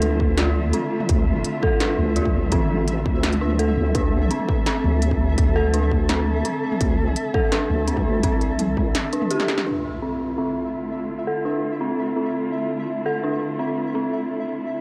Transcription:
Already playing: wobble bass D2, cello section D3 A3 F4 E5, synth bell C4 D4 F4 A4, synth texture E5
0.02 synth bell D4, closed hi-hat
0.11 mid tom
0.20 kick
0.38 synth bell F4, snare, closed hi-hat, mid tom
0.55 mid tom
0.73 synth bell C4, closed hi-hat, mid tom
1.00 mid tom
1.09 wobble bass D2, kick, closed hi-hat
1.18 mid tom
1.36 mid tom
1.45 closed hi-hat
1.62 synth bell A4, kick, mid tom
1.80 synth bell D4, snare, closed hi-hat, mid tom
1.98 wobble bass D2, mid tom
2.16 synth bell F4, closed hi-hat
2.25 kick, mid tom
2.43 mid tom
2.52 wobble bass A1, synth bell C4, kick, closed hi-hat
2.61 mid tom
2.88 closed hi-hat, mid tom
3.06 wobble bass D2, kick, mid tom
3.23 snare, closed hi-hat, mid tom
3.33 closed hi-hat
3.41 synth bell D4
3.50 mid tom
3.59 synth bell A4, closed hi-hat
3.68 mid tom
3.77 wobble bass D2
3.86 mid tom
3.95 wobble bass D2, synth bell D4, cello section A4, kick, closed hi-hat, mid tom
4.22 mid tom
4.31 synth bell C4, closed hi-hat
4.40 mid tom
4.49 kick
4.58 mid tom
4.66 synth bell C4, snare, closed hi-hat
4.84 wobble bass D2, mid tom
5.02 closed hi-hat, mid tom
5.11 kick
5.20 mid tom
5.38 wobble bass D2, kick, closed hi-hat
5.47 mid tom
5.56 synth bell A4
5.65 mid tom
5.74 synth bell D4, closed hi-hat
5.83 mid tom
5.92 kick
6.09 synth bell C4, snare, closed hi-hat, mid tom
6.27 mid tom
6.45 synth bell C4, closed hi-hat, mid tom
6.72 mid tom
6.81 wobble bass D2, kick, closed hi-hat
6.90 mid tom
7.07 mid tom
7.16 closed hi-hat
7.34 synth bell A4, kick, mid tom
7.52 synth bell D4, snare, closed hi-hat, mid tom
7.70 wobble bass D2, mid tom
7.88 synth bell C4, closed hi-hat
7.97 kick, mid tom
8.15 mid tom
8.23 wobble bass C2, synth bell C4, kick, closed hi-hat
8.32 mid tom
8.41 closed hi-hat
8.59 closed hi-hat, mid tom
8.77 kick, mid tom
8.95 snare, closed hi-hat, mid tom
9.13 synth bell D4, closed hi-hat
9.22 mid tom
9.31 synth bell G4, closed hi-hat, high tom
9.40 snare, mid tom
9.48 snare
9.58 snare, mid tom
9.66 cello section D3 A3 E4 F4, synth bell D4, synth texture E5, impact
10.02 synth bell C4
10.38 synth bell C4
11.27 synth bell A4
11.45 synth bell D4
11.81 synth bell C4
12.16 synth bell C4
13.06 synth bell A4
13.24 synth bell D4
13.59 synth bell C4
13.95 synth bell C4

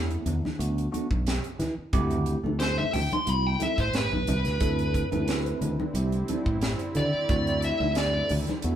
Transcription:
Already playing: fingered electric bass E2, tine electric piano A3 B3 D4 E4
0.10 closed hi-hat
0.26 fingered electric bass E2, closed hi-hat, low conga
0.45 snare, high conga
0.59 fingered electric bass D2, tine electric piano A3 B3 D4 F#4, closed hi-hat
0.78 closed hi-hat
0.92 tine electric piano A3 B3 D4 F#4, closed hi-hat, high conga
1.11 fingered electric bass B1, kick
1.27 snare, closed hi-hat
1.44 tine electric piano D4 F#4, closed hi-hat
1.59 fingered electric bass E3, snare, closed hi-hat, low conga
1.78 muted fingered electric bass stroke
1.93 fingered electric bass D2, tine electric piano A3 C4 E4 G4, kick, closed hi-hat
2.10 closed hi-hat, low conga
2.26 closed hi-hat
2.44 fingered electric bass D2, tine electric piano A3 C4 E4 A4, high conga
2.60 lead electric guitar C5, snare, closed hi-hat
2.78 lead electric guitar E5, high conga
2.93 fingered electric bass D2, lead electric guitar G5, open hi-hat, low conga
3.11 lead electric guitar C6, closed hi-hat, high conga
3.26 fingered electric bass C2, tine electric piano A3 C4 E4 F#4, lead electric guitar B5, closed hi-hat
3.47 lead electric guitar G5
3.59 tine electric piano A3 C4 E4 A4, lead electric guitar E5, closed hi-hat, high conga
3.77 fingered electric bass A1, tine electric piano E4 A4, lead electric guitar C5, kick, snare, closed hi-hat
3.94 fingered electric bass A1, lead electric guitar B4, snare, closed hi-hat
4.11 fingered electric bass B1, tine electric piano E4 G4, high conga
4.27 fingered electric bass C2, snare, closed hi-hat, low conga
4.45 fingered electric bass D2, snare, closed hi-hat
4.60 fingered electric bass D2, analog synth pad D3 G3 C4 E4, tine electric piano A3 C4 E4 A4, kick, closed hi-hat
4.79 closed hi-hat
4.94 kick, closed hi-hat
5.12 fingered electric bass D2, tine electric piano A3 C4 E4 A4, closed hi-hat, high conga
5.28 snare, closed hi-hat
5.46 closed hi-hat
5.61 fingered electric bass D2, closed hi-hat, low conga
5.80 high conga
5.94 fingered electric bass C2, tine electric piano A3 C4 E4 G4, closed hi-hat
6.12 closed hi-hat
6.28 tine electric piano A3 C4 E4 A4, closed hi-hat, high conga
6.46 fingered electric bass A1, kick
6.61 snare, closed hi-hat
6.79 tine electric piano E4 A4, closed hi-hat
6.95 fingered electric bass D3, lead electric guitar D5, closed hi-hat, low conga
7.14 muted fingered electric bass stroke
7.29 fingered electric bass D2, tine electric piano A3 C4 E4 F#4, kick, closed hi-hat
7.47 closed hi-hat
7.62 lead electric guitar E5, closed hi-hat
7.80 fingered electric bass D2, tine electric piano A3 C4 E4 A4, high conga
7.95 lead electric guitar D5, snare, closed hi-hat
8.29 fingered electric bass D2, open hi-hat, low conga
8.47 snare, closed hi-hat, high conga
8.62 fingered electric bass E2, analog synth pad F#3 A3 E4, tine electric piano A3 B3 D4 F#4, closed hi-hat

